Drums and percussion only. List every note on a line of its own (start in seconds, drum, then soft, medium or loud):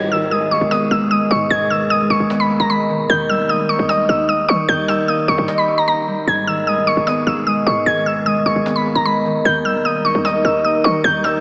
0.02 cajon slap soft
0.12 cajon slap soft
0.22 cajon slap soft
0.31 cajon slap soft
0.41 cajon slap soft
0.61 cajon slap soft
0.71 cajon slap loud
0.91 cajon slap soft
1.01 cajon slap soft
1.11 cajon slap soft
1.31 cajon slap soft
1.51 cajon slap soft
1.61 cajon slap soft
1.71 cajon slap soft
1.81 cajon slap soft
1.90 cajon slap soft
2.00 cajon slap soft
2.20 cajon slap soft
2.30 cajon slap loud
2.40 cajon slap soft
2.50 cajon slap soft
2.60 cajon slap soft
2.70 cajon slap soft
2.89 cajon slap soft
3.10 cajon slap soft
3.20 cajon slap soft
3.30 cajon slap soft
3.39 cajon slap soft
3.49 cajon slap soft
3.59 cajon slap soft
3.79 cajon slap soft
3.89 cajon slap loud
4.09 cajon slap soft
4.19 cajon slap soft
4.29 cajon slap soft
4.49 cajon slap soft
4.69 cajon slap soft
4.79 cajon slap soft
4.88 cajon slap loud
4.98 cajon slap soft
5.08 cajon slap soft
5.18 cajon slap soft
5.38 cajon slap soft
5.48 cajon slap loud
5.58 cajon slap soft
5.68 cajon slap soft
5.78 cajon slap soft
5.88 cajon slap soft
5.94 cajon slap soft
6.01 cajon slap soft
6.08 cajon slap soft
6.14 cajon slap soft
6.21 cajon slap soft
6.28 cajon slap soft
6.38 cajon slap soft
6.47 cajon slap soft
6.57 cajon slap soft
6.67 cajon slap soft
6.77 cajon slap soft
6.97 cajon slap soft
7.07 cajon slap loud
7.17 cajon slap soft
7.27 cajon slap soft
7.37 cajon slap soft
7.47 cajon slap soft
7.66 cajon slap soft
7.86 cajon slap soft
7.96 cajon slap soft
8.06 cajon slap soft
8.16 cajon slap soft
8.26 cajon slap soft
8.36 cajon slap soft
8.56 cajon slap soft
8.66 cajon slap loud
8.76 cajon slap soft
8.86 cajon slap soft
8.96 cajon slap soft
9.06 cajon slap soft
9.25 cajon slap soft
9.45 cajon slap soft
9.55 cajon slap soft
9.65 cajon slap soft
9.75 cajon slap soft
9.85 cajon slap soft
9.95 cajon slap soft
10.15 cajon slap soft
10.25 cajon slap loud
10.35 cajon slap soft
10.45 cajon slap soft
10.55 cajon slap soft
10.65 cajon slap soft
10.84 cajon slap soft
11.04 cajon slap soft
11.14 cajon slap soft
11.24 cajon slap loud
11.34 cajon slap soft